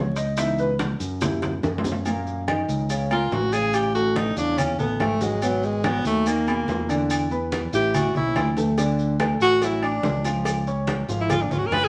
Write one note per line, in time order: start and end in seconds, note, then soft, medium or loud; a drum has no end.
0.00 0.94 C#2 medium
0.00 0.16 C#5 medium
0.16 0.37 D#5 medium
0.16 high conga soft
0.16 high timbale medium
0.16 maracas medium
0.37 0.65 E3 medium
0.37 0.66 B3 medium
0.37 0.66 D#4 medium
0.37 0.58 E5 loud
0.37 high bongo medium
0.37 high conga soft
0.37 high timbale loud
0.37 maracas medium
0.58 0.72 B4 loud
0.58 high bongo soft
0.58 high conga soft
0.58 maracas soft
0.79 high bongo medium
0.79 high conga medium
0.79 high timbale medium
0.79 low timbale medium
0.79 maracas soft
1.00 1.59 F#2 loud
1.00 high bongo soft
1.00 high conga soft
1.00 maracas medium
1.21 1.49 G3 medium
1.21 1.50 A#3 medium
1.21 1.50 E4 medium
1.21 high bongo medium
1.21 high conga soft
1.21 low conga medium
1.21 high timbale medium
1.21 maracas medium
1.42 high bongo medium
1.42 high conga soft
1.42 low conga medium
1.42 high timbale medium
1.42 maracas soft
1.63 2.63 F#2 loud
1.63 high conga medium
1.63 high timbale medium
1.63 maracas soft
1.78 low timbale medium
1.84 low bongo medium
1.84 high conga medium
1.84 maracas medium
1.92 low timbale medium
2.05 2.40 A#2 medium
2.05 2.40 A#3 medium
2.05 2.41 A#4 medium
2.05 high conga soft
2.05 low agogo medium
2.05 maracas medium
2.27 high conga soft
2.27 maracas soft
2.48 2.82 D#3 medium
2.48 2.83 D#4 medium
2.48 2.83 D#5 medium
2.48 high conga medium
2.48 low timbale medium
2.48 low agogo loud
2.48 maracas soft
2.68 3.28 C#2 medium
2.68 high conga soft
2.68 maracas medium
2.90 3.07 C#3 medium
2.90 3.07 C#4 medium
2.90 3.07 C#5 medium
2.90 high conga soft
2.90 low agogo medium
2.90 maracas medium
3.11 3.45 A#3 medium
3.11 3.35 F4 medium
3.11 3.46 A#4 medium
3.11 3.46 A#5 medium
3.11 high conga soft
3.11 low agogo loud
3.11 maracas soft
3.31 4.31 A1 medium
3.31 3.55 F#4 medium
3.31 high conga medium
3.31 low timbale medium
3.31 maracas soft
3.52 3.87 C#3 medium
3.52 3.88 C#4 medium
3.52 3.76 G#4 loud
3.52 3.88 C#5 medium
3.52 high conga soft
3.52 low agogo medium
3.52 maracas medium
3.73 3.94 G4 medium
3.73 low agogo loud
3.73 maracas medium
3.95 4.29 A3 medium
3.95 4.18 F#4 loud
3.95 4.30 A4 medium
3.95 4.30 A5 medium
3.95 high conga soft
3.95 maracas soft
4.16 4.37 D#4 medium
4.16 high conga loud
4.16 low timbale medium
4.16 low agogo medium
4.16 maracas soft
4.37 4.76 E2 medium
4.37 4.71 C#3 medium
4.37 4.72 C#4 medium
4.37 4.60 D4 medium
4.37 4.72 C#5 medium
4.37 high conga soft
4.37 maracas medium
4.58 4.79 C#4 medium
4.58 high conga soft
4.58 low conga medium
4.58 low agogo loud
4.58 maracas medium
4.79 4.99 A1 medium
4.79 5.14 A3 medium
4.79 5.02 B3 medium
4.79 5.14 A4 medium
4.79 5.14 A5 medium
4.79 high conga soft
4.79 low conga medium
4.79 maracas soft
5.00 5.99 G#1 medium
5.00 5.24 A3 medium
5.00 high conga medium
5.00 low timbale medium
5.00 low agogo loud
5.00 maracas soft
5.21 5.38 F#3 medium
5.21 5.45 G#3 medium
5.21 5.39 F#4 medium
5.21 5.39 F#5 medium
5.21 high conga medium
5.21 maracas medium
5.42 5.77 B2 medium
5.42 5.67 F#3 medium
5.42 5.77 B3 medium
5.42 5.77 B4 medium
5.42 low agogo medium
5.42 maracas medium
5.63 5.88 G#3 medium
5.63 high conga soft
5.63 maracas soft
5.84 6.19 F#3 medium
5.84 6.06 B3 medium
5.84 6.19 F#4 medium
5.84 6.19 F#5 medium
5.84 high conga loud
5.84 low timbale medium
5.84 low agogo loud
5.84 maracas soft
6.05 6.64 D#2 loud
6.05 6.29 A3 loud
6.05 high conga soft
6.05 maracas medium
6.26 6.44 D#3 medium
6.26 7.11 A#3 medium
6.26 6.44 D#4 medium
6.26 6.44 D#5 medium
6.26 low agogo medium
6.26 maracas medium
6.47 6.82 B2 medium
6.47 6.82 G#4 medium
6.47 6.82 B5 medium
6.47 high conga soft
6.47 low agogo loud
6.47 maracas soft
6.68 7.67 E2 medium
6.68 high conga medium
6.68 low timbale medium
6.68 maracas soft
6.89 7.23 D3 medium
6.89 7.24 D4 medium
6.89 7.24 D5 medium
6.89 high conga soft
6.89 low agogo medium
6.89 maracas medium
7.10 high conga soft
7.10 low agogo loud
7.10 maracas medium
7.31 7.65 B3 medium
7.31 7.66 B4 medium
7.31 7.66 B5 medium
7.31 high conga soft
7.31 maracas soft
7.52 high conga medium
7.52 low timbale medium
7.52 low agogo medium
7.52 maracas soft
7.73 8.12 A1 loud
7.73 8.08 E3 medium
7.73 8.08 E4 medium
7.73 7.97 G4 loud
7.73 8.08 E5 medium
7.73 high conga soft
7.73 maracas medium
7.94 8.16 F#4 medium
7.94 high conga soft
7.94 low conga medium
7.94 low agogo loud
7.94 maracas medium
8.15 8.34 B1 medium
8.15 8.50 C#4 medium
8.15 8.55 E4 medium
8.15 8.50 C#5 medium
8.15 8.50 C#6 medium
8.15 high conga soft
8.15 low conga medium
8.15 maracas soft
8.35 9.35 D2 medium
8.35 high conga medium
8.35 low timbale medium
8.35 low agogo loud
8.35 maracas soft
8.57 8.74 A3 medium
8.57 8.75 A4 medium
8.57 8.75 A5 medium
8.57 high conga medium
8.57 maracas medium
8.78 9.13 D3 medium
8.78 9.13 D4 medium
8.78 9.13 D5 medium
8.78 cowbell loud
8.78 low agogo medium
8.78 maracas medium
8.99 high conga soft
8.99 maracas soft
9.20 9.54 A3 medium
9.20 9.54 A4 medium
9.20 9.55 A5 medium
9.20 cowbell medium
9.20 high conga loud
9.20 low timbale medium
9.20 low agogo loud
9.20 maracas soft
9.40 10.00 A1 medium
9.40 9.65 F#4 loud
9.40 high conga soft
9.40 maracas medium
9.62 9.79 F#3 medium
9.62 9.86 E4 medium
9.62 9.80 F#4 medium
9.62 9.80 F#5 medium
9.62 cowbell loud
9.62 high conga soft
9.62 low agogo medium
9.62 maracas medium
9.82 10.17 D4 medium
9.82 10.26 D4 loud
9.82 10.18 D5 medium
9.82 10.18 D6 medium
9.82 high conga soft
9.82 low agogo loud
9.82 maracas soft
10.03 11.02 C#2 medium
10.03 cowbell medium
10.03 high conga loud
10.03 low timbale medium
10.03 maracas soft
10.24 10.59 F3 medium
10.24 10.59 F4 medium
10.24 10.60 F5 medium
10.24 cowbell medium
10.24 high conga soft
10.24 low agogo medium
10.24 maracas medium
10.45 cowbell loud
10.45 high conga soft
10.45 low agogo loud
10.45 maracas medium
10.67 11.01 C#4 medium
10.67 11.02 C#5 medium
10.67 11.02 C#6 medium
10.67 high conga soft
10.67 maracas soft
10.87 cowbell medium
10.87 high conga medium
10.87 low timbale medium
10.87 low agogo medium
10.87 maracas soft
11.08 11.48 G#1 loud
11.08 11.43 F3 medium
11.08 11.43 F4 medium
11.08 11.44 F5 medium
11.08 high conga soft
11.08 maracas medium
11.21 11.32 E4 medium
11.30 11.43 F4 loud
11.30 cowbell loud
11.30 high conga soft
11.30 low conga medium
11.30 low agogo loud
11.30 maracas medium
11.42 11.53 D4 medium
11.50 11.70 G#1 medium
11.50 11.85 C#4 medium
11.50 11.60 F4 medium
11.50 11.85 C#5 medium
11.50 11.86 C#6 medium
11.50 high conga soft
11.50 low conga medium
11.50 maracas soft
11.58 11.68 F#4 medium
11.66 11.75 A#4 medium
11.71 11.88 F#1 loud
11.71 11.86 B4 loud
11.71 cowbell medium
11.71 high conga medium
11.71 low timbale medium
11.71 low agogo loud
11.71 maracas soft
11.84 11.88 G#4 loud